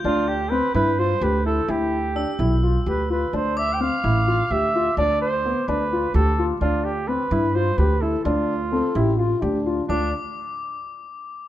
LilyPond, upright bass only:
\new Staff \with { instrumentName = "Upright bass" } { \clef bass \time 7/8 \key d \dorian \tempo 4 = 128 d,4. g,4 d,4 | d,4. b,,4 d,4 | d,4. a,,4 d,4 | d,4. d,4 d,4 |
d,4. g,4 d,4 | d,4. a,,4 d,4 | d,8 r2. | }